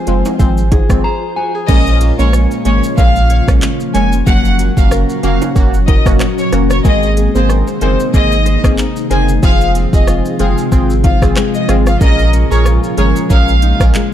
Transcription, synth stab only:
0.07 0.37 F3 medium
0.07 0.37 G#3 medium
0.07 0.37 C4 medium
0.39 0.62 F3 medium
0.39 0.62 G#3 medium
0.39 0.63 C4 loud
0.90 1.04 F3 medium
0.90 1.04 G#3 medium
0.90 1.04 C4 medium
1.68 2.14 G#3 loud
1.68 2.15 A#3 medium
1.68 2.15 C#4 loud
2.19 2.62 G#3 medium
2.19 2.62 A#3 medium
2.19 2.62 C#4 medium
2.65 2.95 G#3 medium
2.65 2.95 A#3 medium
2.65 2.96 C#4 medium
2.97 3.20 G#3 loud
2.97 3.21 A#3 medium
2.97 3.21 C#4 loud
3.48 3.68 G#3 medium
3.48 3.68 A#3 medium
3.48 3.69 C#4 medium
3.94 4.17 G#3 medium
3.94 4.17 A#3 medium
3.94 4.17 C#4 medium
4.27 4.73 A#3 loud
4.27 4.73 C#4 medium
4.27 4.73 F#4 loud
4.77 5.20 A#3 medium
4.77 5.20 C#4 medium
4.77 5.20 F#4 medium
5.23 5.53 A#3 medium
5.23 5.53 C#4 medium
5.23 5.54 F#4 medium
5.55 5.78 A#3 medium
5.55 5.79 C#4 medium
5.55 5.79 F#4 loud
6.06 6.26 A#3 medium
6.06 6.26 C#4 medium
6.06 6.27 F#4 medium
6.52 6.75 A#3 medium
6.52 6.75 C#4 medium
6.52 6.76 F#4 medium
6.85 7.31 A#3 loud
6.85 7.31 C4 medium
6.85 7.31 G#4 loud
7.35 7.78 A#3 medium
7.35 7.78 C4 medium
7.35 7.78 G#4 medium
7.81 8.11 A#3 medium
7.81 8.12 C4 medium
7.81 8.12 G#4 medium
8.14 8.37 A#3 medium
8.14 8.37 C4 medium
8.14 8.37 G#4 loud
8.64 8.84 A#3 medium
8.64 8.85 C4 medium
8.64 8.85 G#4 medium
9.10 9.33 A#3 medium
9.10 9.34 C4 medium
9.10 9.34 G#4 medium
9.42 9.89 C4 loud
9.42 9.89 F4 medium
9.42 9.89 G#4 loud
9.93 10.36 C4 medium
9.93 10.36 F4 medium
9.93 10.36 G#4 medium
10.39 10.70 C4 medium
10.39 10.70 F4 medium
10.39 10.70 G#4 medium
10.72 10.95 C4 medium
10.72 10.95 F4 medium
10.72 10.95 G#4 loud
11.22 11.42 C4 medium
11.22 11.43 F4 medium
11.22 11.43 G#4 medium
11.68 11.91 C4 medium
11.68 11.92 F4 medium
11.68 11.92 G#4 medium
12.01 12.47 C#4 loud
12.01 12.47 G#4 medium
12.01 12.47 A#4 loud
12.51 12.94 C#4 medium
12.51 12.94 G#4 medium
12.51 12.94 A#4 medium
12.98 13.28 C#4 medium
12.98 13.28 G#4 medium
12.98 13.28 A#4 medium
13.30 13.53 C#4 loud
13.30 13.53 G#4 medium
13.30 13.53 A#4 loud
13.80 14.01 C#4 medium
13.80 14.01 G#4 medium
13.80 14.01 A#4 medium

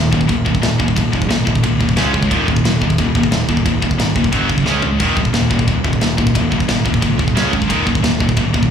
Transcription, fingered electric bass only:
0.00 0.11 D#1 medium
0.13 0.28 D#1 medium
0.29 0.45 D#1 medium
0.46 0.62 D#1 medium
0.62 0.78 D#1 loud
0.80 0.96 D#1 medium
0.97 1.12 D#1 medium
1.14 1.29 D#1 medium
1.30 1.46 G#1 medium
1.47 1.63 D#1 medium
1.64 1.80 C#2 medium
1.80 1.95 D#1 medium
1.96 2.13 C#2 medium
2.14 2.30 C#2 medium
2.31 2.47 D#1 medium
2.48 2.63 D#1 medium
2.64 2.80 D#1 loud
2.82 2.97 D#1 medium
2.98 3.14 D#1 medium
3.15 3.30 D#1 medium
3.31 3.47 D#1 loud
3.49 3.65 D#1 medium
3.66 3.81 D#1 medium
3.83 3.97 D#1 medium
3.97 4.14 G#1 medium
4.16 4.32 F1 loud
4.33 4.49 F#1 medium
4.50 4.65 B1 medium
4.65 4.82 C#2 loud
4.82 5.01 D2 medium
5.00 5.16 D#1 medium
5.17 5.33 D#1 medium
5.33 5.49 D#1 medium
5.51 5.67 D#1 medium
5.67 5.83 D#1 medium
5.84 6.00 D#1 medium
6.01 6.17 D#1 medium
6.18 6.34 D#1 medium
6.36 6.51 D#1 loud
6.52 6.67 D#1 medium
6.68 6.84 G#1 medium
6.86 7.01 D#1 medium
7.03 7.18 C#2 loud
7.19 7.37 D#1 loud
7.35 7.52 C#2 loud
7.53 7.69 F1 medium
7.70 7.86 D#1 medium
7.87 8.02 D#1 medium
8.02 8.19 D#1 loud
8.20 8.36 D#1 loud
8.37 8.53 D#1 medium
8.54 8.70 D#1 loud

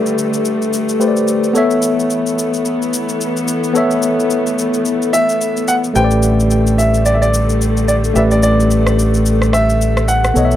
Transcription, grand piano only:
0.00 1.24 D5 medium
5.13 5.64 E5 loud
5.68 5.74 F#5 medium
5.96 6.74 G5 loud
6.78 7.07 E5 medium
7.06 7.14 D5 medium
7.14 7.22 E5 medium
7.22 7.87 D5 medium
7.88 7.94 D5 medium
8.16 8.21 E5 medium
8.32 8.42 D5 medium
8.43 9.57 D5 loud
9.53 10.10 E5 loud
10.08 10.56 F#5 medium

